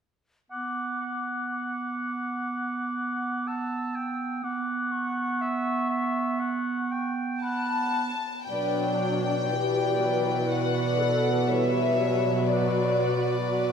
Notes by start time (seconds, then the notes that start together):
0.51 B3 F#5 D6
1.01 F#5
1.51 D6
3.47 A5 E6
3.95 G5
4.44 B3 F#5 D6
4.92 C#6
5.41 E5
5.90 E5
6.39 F#5
6.92 G5
7.42 F#5 A5 B5
8.49 B2 F#3 D4 B4 D5 G5
9.01 D5
9.49 E3 G4 B4
10.00 F#3
10.50 F#4 F#5
11.00 A4
11.48 E3 G3 B4 C#5 E5
11.97 F#3
12.47 F#4 B4 D5
13.46 F#3 F#4 D5